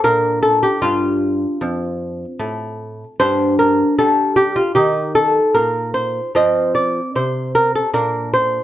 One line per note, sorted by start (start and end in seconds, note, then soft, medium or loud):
0.04 0.66 A#2 medium
0.04 3.15 D4 medium
0.04 0.41 A#4 loud
0.42 0.62 A4 loud
0.63 0.82 G4 medium
0.82 1.45 G2 medium
0.82 3.15 F4 medium
1.61 2.24 F2 medium
2.39 3.03 A2 medium
3.20 3.82 G2 medium
3.20 4.72 D4 medium
3.20 3.57 C5 loud
3.59 3.96 A#4 medium
3.98 4.60 G3 medium
3.98 4.35 A4 loud
4.36 4.55 G4 loud
4.56 4.75 F4 medium
4.75 5.39 D#3 medium
4.75 6.31 D#4 medium
4.75 5.13 G4 loud
5.15 5.53 A4 medium
5.54 6.19 A#2 medium
5.54 5.93 A#4 medium
5.94 6.33 C5 medium
6.35 6.99 F3 medium
6.35 7.92 C4 medium
6.35 6.74 D#5 loud
6.75 7.13 D5 medium
7.16 7.80 C3 medium
7.16 7.54 C5 medium
7.55 7.75 A#4 medium
7.75 7.93 A4 medium
7.94 8.58 A#2 medium
7.94 8.64 D4 medium
7.94 8.32 A#4 loud
8.33 8.64 C5 medium